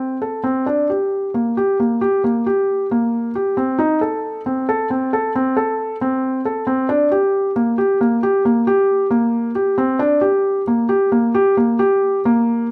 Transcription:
0.00 0.16 C4 medium
0.22 0.42 A4 medium
0.44 0.64 C4 medium
0.66 0.87 D4 medium
0.90 1.29 G4 medium
1.34 1.54 A#3 medium
1.57 1.77 G4 medium
1.80 1.99 A#3 medium
2.01 2.21 G4 medium
2.24 2.44 A#3 medium
2.46 2.85 G4 medium
2.91 3.30 A#3 medium
3.35 3.55 G4 medium
3.57 3.77 C4 medium
3.79 3.98 D#4 medium
4.01 4.40 A4 medium
4.46 4.65 C4 medium
4.69 4.88 A4 medium
4.90 5.10 C4 medium
5.13 5.32 A4 medium
5.35 5.54 C4 medium
5.57 5.95 A4 medium
6.01 6.40 C4 medium
6.45 6.65 A4 medium
6.67 6.86 C4 medium
6.89 7.08 D4 medium
7.11 7.50 G4 medium
7.56 7.75 A#3 medium
7.78 7.97 G4 medium
8.01 8.20 A#3 medium
8.23 8.42 G4 medium
8.45 8.64 A#3 medium
8.67 9.06 G4 medium
9.11 9.50 A#3 medium
9.55 9.75 G4 medium
9.78 9.97 C4 medium
9.99 10.19 D4 medium
10.21 10.61 G4 medium
10.67 10.87 A#3 medium
10.89 11.09 G4 medium
11.12 11.32 A#3 medium
11.35 11.54 G4 medium
11.57 11.77 A#3 medium
11.79 12.19 G4 medium
12.25 12.66 A#3 medium

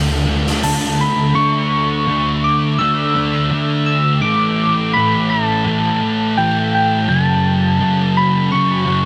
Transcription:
0.00 1.31 D2 medium
0.00 0.25 D3 medium
0.00 1.32 D3 medium
0.00 0.25 A3 medium
0.00 1.33 A3 medium
0.00 0.25 D4 medium
0.00 1.34 D4 medium
0.00 1.34 F4 medium
0.26 0.62 D3 soft
0.26 0.61 A3 medium
0.26 0.61 D4 medium
0.47 snare soft
0.63 1.33 D3 medium
0.63 1.33 A3 medium
0.63 1.34 D4 medium
0.63 1.02 A5 medium
0.63 open hi-hat soft
1.01 1.37 B5 medium
1.34 2.05 D3 medium
1.34 2.07 A3 medium
1.34 2.09 D4 medium
1.34 2.46 C#6 loud
2.06 2.78 D3 medium
2.06 2.80 A3 medium
2.06 2.80 D4 medium
2.44 2.80 D6 medium
2.79 3.49 D3 medium
2.79 3.17 A3 loud
2.79 3.14 D4 loud
2.79 3.86 E6 loud
3.15 3.52 A3 medium
3.15 3.52 D4 medium
3.50 4.20 D3 medium
3.50 4.22 A3 medium
3.50 4.21 D4 medium
3.86 4.20 E6 medium
4.22 4.92 A2 medium
4.22 4.95 E3 medium
4.22 4.97 A3 loud
4.22 4.95 D6 loud
4.93 5.63 A2 medium
4.93 5.65 E3 medium
4.93 5.66 A3 medium
4.93 5.31 B5 medium
5.30 6.39 A5 medium
5.65 6.35 A2 loud
5.65 6.02 E3 medium
5.65 5.99 A3 loud
6.00 6.36 E3 medium
6.00 6.38 A3 medium
6.36 7.06 A2 medium
6.36 7.07 E3 medium
6.36 7.07 A3 medium
6.36 6.73 G5 loud
6.74 7.10 G5 medium
7.08 7.79 F#2 medium
7.08 7.80 C#3 loud
7.08 7.82 F#3 medium
7.08 8.19 A5 loud
7.80 8.49 F#2 medium
7.80 8.51 C#3 medium
7.80 8.53 F#3 loud
8.17 8.53 B5 loud
8.51 9.05 F#2 loud
8.51 8.87 C#3 loud
8.51 8.85 F#3 loud
8.51 9.05 C#6 loud
8.85 9.05 C#3 medium
8.85 9.05 F#3 medium

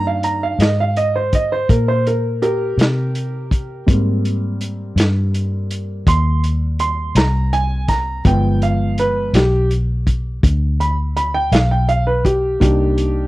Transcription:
0.00 0.57 G2 medium
0.00 0.55 D#3 soft
0.00 0.56 A#3 soft
0.00 0.56 D4 medium
0.07 0.23 F5 medium
0.23 0.41 A#5 medium
0.23 closed hi-hat medium
0.43 0.59 F5 medium
0.59 1.65 G#2 medium
0.59 0.77 D#5 medium
0.59 snare loud
0.59 closed hi-hat medium
0.80 0.96 F5 medium
0.96 1.13 D#5 medium
0.96 closed hi-hat medium
1.16 1.32 C5 medium
1.33 1.50 D#5 medium
1.33 kick medium
1.33 closed hi-hat medium
1.52 1.68 C5 medium
1.69 2.75 A#2 medium
1.69 1.86 A#4 medium
1.69 kick medium
1.69 closed hi-hat medium
1.88 2.05 C5 medium
2.07 2.41 A#4 medium
2.07 closed hi-hat medium
2.42 3.83 G4 medium
2.42 3.84 A#4 medium
2.42 closed hi-hat medium
2.78 3.84 C3 medium
2.78 snare loud
2.78 closed hi-hat medium
3.15 closed hi-hat medium
3.51 kick medium
3.51 closed hi-hat medium
3.86 4.93 G#2 medium
3.86 8.19 G3 soft
3.86 8.20 A#3 soft
3.86 8.20 C4 soft
3.86 kick loud
3.86 closed hi-hat medium
4.25 closed hi-hat medium
4.61 closed hi-hat medium
4.96 6.02 G2 medium
4.96 snare loud
4.96 closed hi-hat medium
5.34 closed hi-hat medium
5.71 closed hi-hat medium
6.07 7.12 D#2 medium
6.07 6.42 C6 medium
6.07 kick medium
6.07 closed hi-hat medium
6.44 closed hi-hat medium
6.79 7.14 C6 medium
6.79 closed hi-hat medium
7.15 8.21 C2 medium
7.15 7.51 A#5 medium
7.15 snare loud
7.15 closed hi-hat medium
7.53 7.87 G#5 medium
7.53 closed hi-hat medium
7.88 8.23 A#5 medium
7.88 kick medium
7.88 snare soft
7.88 closed hi-hat medium
8.25 9.30 G1 medium
8.25 9.29 F3 soft
8.25 9.30 G#3 soft
8.25 9.30 B3 soft
8.25 8.61 G5 medium
8.25 kick loud
8.25 closed hi-hat medium
8.62 8.97 F5 medium
8.62 closed hi-hat medium
8.98 9.33 B4 medium
8.98 closed hi-hat medium
9.33 10.39 B1 medium
9.33 9.69 G4 medium
9.33 snare loud
9.33 closed hi-hat medium
9.71 closed hi-hat medium
10.07 kick medium
10.07 closed hi-hat medium
10.43 11.48 D2 medium
10.43 kick loud
10.43 closed hi-hat medium
10.80 10.96 B5 medium
10.80 closed hi-hat medium
11.17 11.33 B5 medium
11.17 closed hi-hat medium
11.34 11.51 G5 medium
11.52 12.57 B1 medium
11.52 11.69 F5 medium
11.52 snare loud
11.52 closed hi-hat medium
11.71 11.87 G5 medium
11.89 12.05 F5 medium
11.89 closed hi-hat medium
12.07 12.23 B4 medium
12.25 12.60 G4 medium
12.25 kick medium
12.25 closed hi-hat medium
12.60 13.27 C2 medium
12.60 13.27 A#3 soft
12.60 13.27 D4 medium
12.60 13.27 D#4 soft
12.60 13.27 G4 medium
12.60 kick loud
12.60 closed hi-hat medium
12.98 closed hi-hat medium

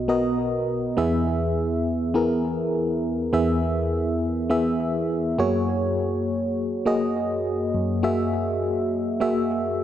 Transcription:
0.00 0.93 B1 medium
0.00 0.93 B2 medium
0.00 0.08 B3 medium
0.00 0.09 F#4 medium
0.00 0.09 A#4 medium
0.00 0.09 D#5 medium
0.08 0.72 B3 medium
0.08 0.72 F#4 medium
0.08 0.72 A#4 medium
0.08 0.72 D#5 medium
0.97 3.29 E2 medium
0.97 3.29 E3 medium
0.97 1.81 B3 medium
0.97 1.81 E4 medium
0.97 1.81 G#4 medium
0.97 1.82 E5 medium
2.14 2.99 B3 medium
2.14 2.99 E4 medium
2.14 2.99 G#4 medium
2.14 2.99 A#4 medium
3.33 5.35 E2 medium
3.33 5.35 E3 medium
3.33 4.17 B3 medium
3.33 4.17 E4 medium
3.33 4.17 G#4 medium
3.33 4.17 E5 medium
4.50 5.34 B3 medium
4.50 5.34 E4 medium
4.50 5.34 G#4 medium
4.50 5.35 E5 medium
5.38 7.70 F#2 medium
5.38 6.33 A#3 medium
5.38 6.33 F#4 medium
5.38 6.33 G#4 medium
5.38 6.33 C#5 medium
6.86 7.70 A#3 medium
6.86 7.70 F#4 medium
6.86 7.70 G#4 medium
6.86 7.70 D#5 medium
7.75 9.84 F#2 medium
8.03 8.87 A#3 medium
8.03 8.87 F#4 medium
8.03 8.87 G#4 medium
8.03 8.88 E5 medium
9.20 9.84 A#3 medium
9.20 9.84 F#4 medium
9.20 9.84 G#4 medium
9.20 9.84 E5 medium

